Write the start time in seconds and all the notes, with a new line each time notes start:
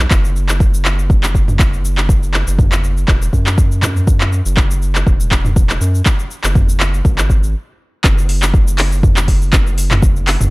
0.11 F#1, kick, clap, shaker
0.25 shaker
0.36 shaker
0.49 clap, shaker
0.60 kick, shaker
0.74 shaker
0.85 clap, shaker
0.99 shaker
1.10 kick, shaker
1.23 clap, shaker
1.35 kick, shaker
1.48 mid tom, shaker
1.59 kick, clap, shaker
1.73 shaker
1.85 shaker
1.98 clap, shaker
2.09 kick, shaker
2.23 shaker
2.34 clap, shaker
2.47 F#1, shaker
2.59 kick, mid tom, shaker
2.72 clap, shaker
2.84 shaker
2.97 shaker
3.08 E1, kick, clap, shaker
3.22 shaker
3.33 F#2, kick, shaker
3.46 clap, shaker
3.58 kick, shaker
3.72 shaker
3.83 clap, mid tom, shaker
3.96 shaker
4.07 kick, shaker
4.21 clap, shaker
4.32 shaker
4.45 F#1, shaker
4.57 kick, clap, shaker
4.71 shaker
4.82 shaker
4.95 clap, shaker
5.07 E1, kick, shaker
5.20 shaker
5.31 kick, clap, shaker
5.45 mid tom, shaker
5.56 kick, shaker
5.70 clap, shaker
5.81 F#2, shaker
5.95 shaker
6.06 kick, clap, shaker
6.19 shaker
6.31 shaker
6.44 F#1, clap, shaker
6.55 kick, mid tom, shaker
6.69 shaker
6.80 clap, shaker
6.94 shaker
7.05 G#1, kick, shaker
7.18 clap, shaker
7.30 kick, shaker
7.44 shaker
8.04 F#1, kick, clap, shaker
8.18 shaker
8.29 open hi-hat, shaker
8.42 clap, shaker
8.54 kick, shaker
8.68 shaker
8.78 clap, open hi-hat, shaker
8.92 shaker
9.03 kick, mid tom, shaker
9.17 clap, shaker
9.28 kick, open hi-hat, shaker
9.42 shaker
9.53 kick, clap, shaker
9.67 shaker
9.78 open hi-hat, shaker
9.91 clap, mid tom, shaker
10.03 kick, shaker
10.16 shaker
10.27 clap, open hi-hat, shaker
10.40 F#1, mid tom, shaker